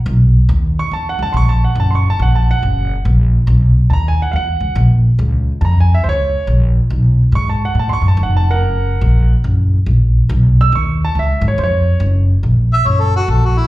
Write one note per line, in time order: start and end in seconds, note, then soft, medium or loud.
0.06 0.38 B1 loud
0.49 0.80 D#2 medium
0.79 0.92 C#6 medium
0.91 1.12 E2 medium
0.91 1.06 A5 medium
1.09 1.21 F#5 medium
1.19 1.30 C#2 medium
1.19 1.35 A5 medium
1.32 1.66 A#1 medium
1.32 1.35 C6 medium
1.37 1.49 C#6 loud
1.49 1.62 A5 medium
1.64 1.77 F#5 medium
1.75 2.08 F#1 medium
1.80 1.92 A5 medium
1.91 1.95 C6 medium
1.95 2.07 C#6 medium
2.10 2.21 A5 medium
2.19 2.51 A#1 medium
2.19 2.35 F#5 medium
2.35 2.48 A5 medium
2.51 2.91 F#5 loud
2.62 2.94 F#1 medium
3.05 3.37 A#1 loud
3.47 3.79 B1 loud
3.90 4.22 D#2 medium
3.90 3.93 A5 medium
3.90 4.06 A#5 medium
4.08 4.20 G#5 medium
4.22 4.34 F#5 medium
4.32 4.54 E2 medium
4.32 4.35 F5 medium
4.36 4.76 F#5 medium
4.61 4.72 C#2 medium
4.75 5.07 A#1 medium
5.19 5.50 C#2 loud
5.61 5.93 F2 medium
5.61 5.64 A5 medium
5.61 5.77 A#5 medium
5.80 5.92 G#5 medium
5.94 6.06 E5 medium
6.04 6.36 C#2 medium
6.04 6.06 C5 medium
6.09 6.48 C#5 loud
6.47 6.79 A#1 medium
6.90 7.22 B1 medium
7.32 7.64 G#2 medium
7.32 7.48 C#6 medium
7.49 7.62 A5 medium
7.65 7.77 F#5 medium
7.75 7.95 A2 medium
7.79 7.91 A5 medium
7.89 7.93 C6 medium
7.89 8.05 C#6 loud
8.02 8.13 F#2 medium
8.08 8.20 A5 medium
8.17 8.59 F1 loud
8.23 8.34 F#5 medium
8.37 8.48 A5 medium
8.50 9.29 A#4 medium
8.50 9.31 F#5 medium
8.59 8.91 F#1 loud
9.01 9.34 A#1 medium
9.44 9.76 F#1 medium
9.86 10.19 A#1 medium
10.29 10.62 B1 loud
10.61 10.74 E6 loud
10.72 11.04 D#2 medium
10.72 11.01 C#6 medium
11.05 11.17 A5 medium
11.15 11.36 C#2 medium
11.19 11.44 E5 medium
11.41 11.53 G#2 medium
11.48 11.60 C#5 medium
11.58 11.90 F2 medium
11.58 11.61 C5 medium
11.64 12.02 C#5 loud
12.00 12.32 F#1 medium
12.43 12.75 A#1 medium
12.73 12.88 E5 medium
12.86 13.18 F#1 medium
12.86 13.03 C#5 medium
13.01 13.15 A4 medium
13.16 13.32 F#4 medium
13.28 13.60 A#1 medium
13.28 13.47 A4 medium
13.45 13.60 F#4 medium
13.59 13.67 E4 medium